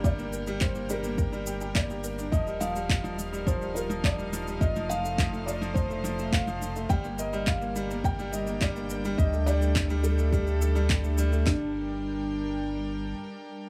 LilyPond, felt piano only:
\new Staff \with { instrumentName = "Felt piano" } { \time 4/4 \key g \minor \tempo 4 = 105 d''4 c''8 bes'4. d''4 | ees''8 f''4. c''8 bes'8 d''4 | ees''8 f''4 d''8 c''4 f''4 | g''8 ees''8 f''4 g''8 ees''8 d''4 |
ees''8 d''4 a'8 g'4. r8 | d'1 | }